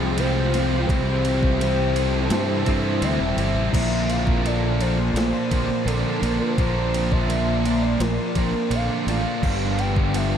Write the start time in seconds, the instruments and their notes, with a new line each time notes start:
Already playing: fingered electric bass C2, distorted electric guitar F2 C3 F3, overdriven electric guitar F2 F3 G#3 C4 F4, twelve-string acoustic guitar F3 G#3 C4, ambient pad G#3 F4 G5, soft synth lead G#4
0.16 distorted electric guitar F2 C3, overdriven electric guitar F3 G#3 C4, twelve-string acoustic guitar G4, soft synth lead C5, ride
0.20 overdriven electric guitar F4
0.52 distorted electric guitar C3 F3, overdriven electric guitar G#3 C4 F4, twelve-string acoustic guitar C4, snare, ride
0.86 fingered electric bass C2, overdriven electric guitar C3 E3 G3 C4 E4, twelve-string acoustic guitar E3, ambient pad E4 C5 A5, soft synth lead C5, kick, ride
1.24 twelve-string acoustic guitar E3, distorted electric guitar G3 C4, ride
1.43 kick
1.59 distorted electric guitar C3 G3 C4, twelve-string acoustic guitar C4, soft synth lead C5, ride
1.95 overdriven electric guitar G3 C4 E4, twelve-string acoustic guitar A3, ride
2.30 fingered electric bass G2, overdriven electric guitar E3 G3 C4 E4, twelve-string acoustic guitar E3, soft synth lead C5, snare, ride
2.66 fingered electric bass G2, overdriven electric guitar C3 G3 C4 E4, twelve-string acoustic guitar A3, kick, ride
3.01 fingered electric bass D2, distorted electric guitar C3, overdriven electric guitar E3 G3 C4 E4, twelve-string acoustic guitar G4, soft synth lead E5, ride
3.19 fingered electric bass E1
3.37 fingered electric bass G1, overdriven electric guitar G3 C4 E4, twelve-string acoustic guitar C4, ride
3.55 fingered electric bass A1
3.72 fingered electric bass A#1, overdriven electric guitar A#2 D3 F3 A#3 D4, twelve-string acoustic guitar F3, ambient pad D5 A5 C6, soft synth lead E5, kick, crash, ride
3.90 distorted electric guitar F3 A#3
4.09 twelve-string acoustic guitar C4, soft synth lead F5, ride
4.25 overdriven electric guitar F3 A#3 D4, kick
4.43 overdriven electric guitar A#2 D3 F3 A#3 D4, twelve-string acoustic guitar A4, soft synth lead D5, ride
4.78 distorted electric guitar A#2, overdriven electric guitar D3 F3 A#3 D4, twelve-string acoustic guitar D4, soft synth lead C5, ride
4.97 distorted electric guitar F3 A#3, muted overdriven electric guitar stroke
5.14 fingered electric bass A#1, twelve-string acoustic guitar F3, soft synth lead C5, snare, ride
5.33 distorted electric guitar F3 A#3
5.50 fingered electric bass A#1, distorted electric guitar A#2, overdriven electric guitar D3 F3 A#3 D4, twelve-string acoustic guitar C4, kick, ride
5.67 distorted electric guitar F3 A#3, muted overdriven electric guitar stroke
5.85 fingered electric bass A#1, overdriven electric guitar A#2 D3 F3 A#3 D4, soft synth lead A4, twelve-string acoustic guitar A4, ride
6.03 overdriven electric guitar F3 A#3 D4
6.20 fingered electric bass A#1, distorted electric guitar A#2, overdriven electric guitar D3 F3 A#3 D4, twelve-string acoustic guitar D4, soft synth lead A#4, ride
6.39 overdriven electric guitar F3 A#3 D4, soft synth lead C5
6.57 fingered electric bass A#1, overdriven electric guitar A#2 D3 F3 A#3 D4, twelve-string acoustic guitar F3, kick, ride
6.76 distorted electric guitar F3 A#3
6.94 twelve-string acoustic guitar C4, ride
7.11 overdriven electric guitar F3 A#3 D4, soft synth lead E5, kick
7.28 overdriven electric guitar A#2 D3 F3 A#3 D4, ride
7.63 distorted electric guitar A#2, overdriven electric guitar D3 F3 A#3 D4, twelve-string acoustic guitar D4, ride
7.81 distorted electric guitar F3 A#3, soft synth lead D5, muted overdriven electric guitar stroke
8.00 fingered electric bass A#1, twelve-string acoustic guitar F3, soft synth lead A#4, snare, ride
8.18 distorted electric guitar F3 A#3
8.35 fingered electric bass A#1, distorted electric guitar A#2, overdriven electric guitar D3 F3 A#3 D4, twelve-string acoustic guitar C4, kick, ride
8.53 distorted electric guitar F3 A#3, muted overdriven electric guitar stroke
8.70 fingered electric bass A#1, overdriven electric guitar A#2 D3 F3 A#3 D4, twelve-string acoustic guitar A4, soft synth lead F5, ride
8.88 overdriven electric guitar F3 A#3 D4
9.06 fingered electric bass A1, distorted electric guitar A#2, overdriven electric guitar D3 F3 A#3 D4, twelve-string acoustic guitar D4, snare, ride
9.23 overdriven electric guitar F3 A#3 D4
9.42 fingered electric bass G1, overdriven electric guitar G2 D3 F3 B3 D4, twelve-string acoustic guitar F3, ambient pad F4 G4 B5, soft synth lead F5, kick, crash
9.46 distorted electric guitar G3
9.61 distorted electric guitar D3 G3
9.79 twelve-string acoustic guitar B3, soft synth lead G5, ride
9.95 distorted electric guitar D3 G3, overdriven electric guitar F3 B3 D4, kick
10.12 overdriven electric guitar G2 D3 F3 B3 D4, distorted electric guitar G3, twelve-string acoustic guitar G4, soft synth lead E5, ride